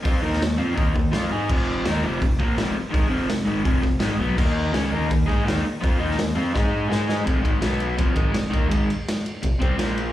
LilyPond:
<<
  \new Staff \with { instrumentName = "Overdriven electric guitar" } { \clef bass \time 4/4 \key f \minor \tempo 4 = 166 <f c' f'>8 <ees bes ees'>8 <ees bes>8 <f c' f'>8 <ees bes ees'>8 <ees bes>8 <f c' f'>8 <aes ees' aes'>8 | <f, c f>4 <ees bes ees'>8 <f, c f>8 <f, c>8 <bes, f bes>8 <f, c f>8 r8 | <aes, ees aes>8 <f, c f>8 <f, c>8 <aes, ees aes>8 <f, c f>8 <f, c>8 <aes, ees aes>8 <b, ges b>8 | <ees bes ees'>4 <des aes des'>8 <ees bes ees'>8 <ees bes>8 <aes ees' aes'>8 <ees bes ees'>8 r8 |
<f c' f'>8 <ees bes ees'>8 <ees bes>8 <f c' f'>8 <aes ees' aes'>4 <aes ees' aes'>4 | <f, c f>8 <aes, ees aes>8 <b, fis b>4 <f, c f>8 <aes, ees aes>8 <f, c>8 <ees bes ees'>8 | <aes, ees aes>8 r4. <f, c>8 <c g c'>8 <bes, f bes>4 | }
  \new Staff \with { instrumentName = "Picked electric bass" } { \clef bass \time 4/4 \key f \minor f,8 ees,8 ees,8 f,8 ees,8 ees,8 f,8 aes,8 | f,,4 ees,8 f,,8 f,,8 bes,,8 f,,8 r8 | aes,,8 f,,8 f,,8 aes,,8 f,,8 f,,8 aes,,8 b,,8 | ees,4 des,8 ees,8 ees,8 aes,8 ees,8 r8 |
f,8 ees,8 ees,8 f,8 aes,4 aes,4 | f,,8 aes,,8 b,,4 f,,8 aes,,8 f,,8 ees,8 | aes,,8 r4. f,,8 c,8 bes,,4 | }
  \new DrumStaff \with { instrumentName = "Drums" } \drummode { \time 4/4 <hho bd>8. sn16 <hho sn>4 <hho bd>8 bd8 <hho sn>4 | <cymc bd>4 <hho sn>4 <hho bd>8 bd8 <hho sn>4 | <hho bd>4 <hho sn>4 <hho bd>8 <bd sn>8 <hho sn>4 | <cymc bd>4 <hho sn>4 <hho bd>8 <bd sn>8 <hho sn>4 |
<hho bd>8. sn16 <hho sn>4 <bd sn>4 sn8 sn8 | <bd cymr>8 <bd cymr>8 <cymr sn>8 cymr8 <bd cymr>8 <bd cymr>8 <cymr sn>8 <bd cymr>8 | <bd cymr>8 cymr8 <cymr sn>8 cymr8 <bd cymr>8 <bd cymr>8 <cymr sn>8 cymr8 | }
>>